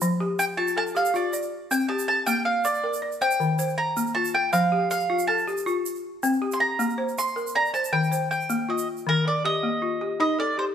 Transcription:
Already playing: F4
0.01 F3, shaker
0.20 G4
0.39 G5, shaker
0.57 F4 A5
0.68 shaker
0.77 A4 A5
0.87 shaker
0.95 G4 F5, shaker
1.05 shaker
1.14 F4 D5, shaker
1.33 D5, shaker
1.42 shaker
1.71 C4 G5, shaker
1.88 G4 A5
1.99 shaker
2.08 A5
2.26 A#3 G5, shaker
2.45 F5
2.64 D5, shaker
2.74 shaker
2.84 A#4
2.93 shaker
3.02 D5
3.12 shaker
3.21 C5 G5, shaker
3.31 shaker
3.40 D#3, shaker
3.59 C5, shaker
3.68 shaker
3.78 A#5
3.97 A#3, shaker
4.07 shaker
4.15 F4 A5
4.25 shaker
4.35 G5
4.53 F3 F5, shaker
4.72 G4
4.91 F5, shaker
5.00 shaker
5.10 F4
5.19 shaker
5.27 A4 A5
5.38 shaker
5.48 G4, shaker
5.57 shaker
5.66 F4, shaker
5.86 shaker
5.95 shaker
6.23 C4, shaker
6.42 G4
6.52 C6, shaker
6.60 A#5
6.79 A#3, shaker
6.90 shaker
6.98 C5
7.09 shaker
7.18 C6, shaker
7.27 shaker
7.36 A#4, shaker
7.47 shaker
7.55 D5 A#5
7.66 shaker
7.74 C5 A5, shaker
7.84 shaker
7.93 D#3 G5
8.03 shaker
8.12 C5, shaker
8.31 G5, shaker
8.41 shaker
8.50 A#3, shaker
8.69 F4 D#5
8.78 shaker
8.97 shaker
9.07 D#3 A#4
9.25 A#4 D5
9.45 G4 D#5
9.63 A#3
9.82 F4
10.01 G4
10.20 D#4 D#5
10.39 A4 D5
10.58 G4 C5

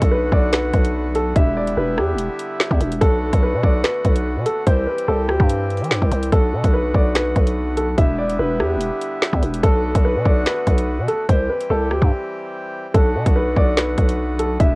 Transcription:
Already playing: D3 A3 B3 F#4
0.02 B1, kick, closed hi-hat
0.12 B4
0.32 B1 D5, kick
0.53 B4, finger snap, snare, closed hi-hat
0.74 B1, kick, closed hi-hat
0.85 closed hi-hat
1.15 A4, closed hi-hat
1.36 E1 G3 E4 E5, kick, closed hi-hat
1.57 D5
1.67 closed hi-hat
1.77 E1 B4
1.98 E2 G4, cross-stick
2.14 E1
2.18 closed hi-hat
2.39 closed hi-hat
2.60 finger snap, snare
2.71 E2, kick
2.81 E1, closed hi-hat
2.92 closed hi-hat
3.01 B1 D3 A3 F#4 A4, kick, closed hi-hat
3.33 B1, kick, closed hi-hat
3.43 B4
3.54 B2
3.63 B1 D5, kick
3.84 B4, finger snap, snare, closed hi-hat
4.05 B1, kick, closed hi-hat
4.16 closed hi-hat
4.36 B2
4.46 A4, closed hi-hat
4.67 C2 E3 G3 C4 G4 C5, kick, closed hi-hat
4.87 B4
4.98 closed hi-hat
5.08 C2 A4
5.29 D2 G4, cross-stick
5.40 G2, kick
5.49 closed hi-hat
5.70 closed hi-hat
5.77 closed hi-hat
5.81 E3, closed hi-hat
5.91 G2, finger snap, snare
6.02 C2, kick
6.12 C2, closed hi-hat
6.23 closed hi-hat
6.32 B1 D3 A3 B3 F#4 A4, kick, closed hi-hat
6.53 B2
6.64 B1, kick, closed hi-hat
6.73 B4
6.94 B1 D5, kick
7.15 B4, finger snap, snare, closed hi-hat
7.36 B1, kick, closed hi-hat
7.47 closed hi-hat
7.77 A4, closed hi-hat
7.98 E1 G3 E4 E5, kick, closed hi-hat
8.18 D5
8.30 closed hi-hat
8.39 E1 B4
8.60 E2 G4, cross-stick
8.76 E1
8.81 closed hi-hat
9.01 closed hi-hat
9.22 finger snap, snare
9.33 E2, kick
9.43 E1, closed hi-hat
9.54 closed hi-hat
9.63 B1 A3 F#4 A4, kick, closed hi-hat
9.95 B1, kick, closed hi-hat
10.05 B4
10.16 B2
10.25 B1 D5, kick
10.46 B4, finger snap, snare, closed hi-hat
10.67 B1, kick, closed hi-hat
10.78 closed hi-hat
10.98 B2
11.08 A4, closed hi-hat
11.29 C2 E3 G3 C4 G4 C5, kick, closed hi-hat
11.49 B4
11.61 closed hi-hat
11.70 C2 A4
11.91 D2 G4, cross-stick
12.02 G2, kick
12.94 B1 D3 A3 B3 F#4 A4, kick, closed hi-hat
13.15 B2
13.26 B1, kick, closed hi-hat
13.36 B4
13.56 B1 D5, kick
13.77 B4, finger snap, snare, closed hi-hat
13.98 B1, kick, closed hi-hat
14.09 closed hi-hat
14.39 A4, closed hi-hat
14.60 E1 D3 G3 E4 E5, kick, closed hi-hat

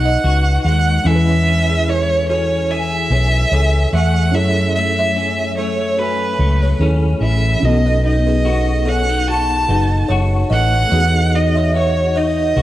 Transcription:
Already playing: B1 D#4 F#4 G#4 B4 F#5
0.05 B4 D#5
0.24 C#2 F#4
0.65 D#2 G#3 F#5
1.04 E2 E3 C#4 E4 E5 G#5
1.09 A4
1.15 B4
1.29 C#5 E5
1.47 C#4
1.70 G#4 B4
1.88 E4 A4 C#5
2.29 C#4 F#4 A4 C#5
2.71 G#4 E5
3.10 B1 C#4 G#4 B4
3.51 C#2 G#4 A4 C#5
3.93 E2 A3 C#5 E5 F#5
4.32 F#2 C#4 E4 G#4 C#5 E5
4.36 A4
4.75 A3 E5
4.99 C#5 E5
5.16 C#4 A4 C#5
5.57 A3 A4 C#5
5.98 C#4 F#4 A4 B4
6.39 C#2 A3
6.63 A4 C#5
6.79 D#2 C#4 E4 G#4 A4
7.21 A1 E3 E5
7.60 B1 B2 C#4 D#4 F#4
7.64 A4 D#5
7.86 B4 D#5
8.04 D#4 D#5
8.27 G#4 B4
8.45 F#4 A4
8.85 C#4 F#4 A4 F#5
9.09 D#4
9.28 F#4 A5
9.68 F#1 D#4 G#4 B4
10.08 F#1 F#4 A4 C#5
10.50 A1 A3 B4 D#5 F#5
10.89 E2 B3 D#4 F#4 B4 D#5
10.94 G#4
11.35 D#4 D#5
11.55 C#5 E5
11.74 F#4 B4 C#5 D#5
12.16 D#4 B4 D#5
12.56 B1 F#4 G#4 B4

